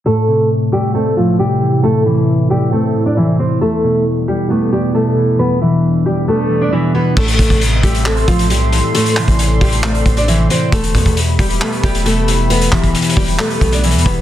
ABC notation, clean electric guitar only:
X:1
M:4/4
L:1/8
Q:1/4=135
K:Am
V:1 name="Clean electric guitar" clef=bass
A,, C,2 A, C A,, C, E, | A,, C,2 A, C A,, C, E, | E,, B,,2 G, B, E,, B,, E, | E,, B,,2 G, B, E,, B,, E, |
A,, C,2 A, C A,,2 E, | A,, C,2 A, C A,, C, E, | z B,,2 G, B, E,, B,, E, | E,, B,,2 G, B, E,, B,, E, |]